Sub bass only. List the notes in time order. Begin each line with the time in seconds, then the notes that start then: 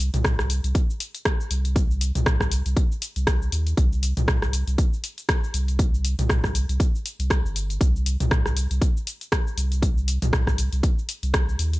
0.14 C2
0.64 C2
1.51 C2
2.15 C2
2.66 C2
3.16 C2
3.52 D#2
3.77 C2
4.17 C2
4.67 C2
5.54 C2
6.19 C2
6.69 C2
7.19 C2
7.45 G1
7.81 C2
8.20 C2
8.71 C2
9.57 C2
10.22 C2
10.72 C2
11.23 C2
11.59 D#2